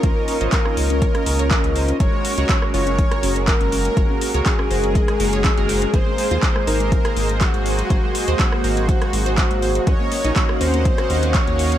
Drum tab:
HH |x-oxx-oxxxoxxxox|x-oxx-oxxxoxxxox|x-oxx-oxxxoxxxox|x-oxx-oxxxoxxxox|
CP |----x-------x---|----x-------x---|----x-------x---|----x-------x---|
SD |-----r---r------|-----r---r------|-----r---r------|-----r---r------|
BD |o---o---o---o---|o---o---o---o---|o---o---o---o---|o---o---o---o---|

HH |x-oxx-oxxxoxxxox|x-oxx-oxxxoxxxox|
CP |----x-------x---|----x-------x---|
SD |-----r---r------|-----r---r------|
BD |o---o---o---o---|o---o---o---o---|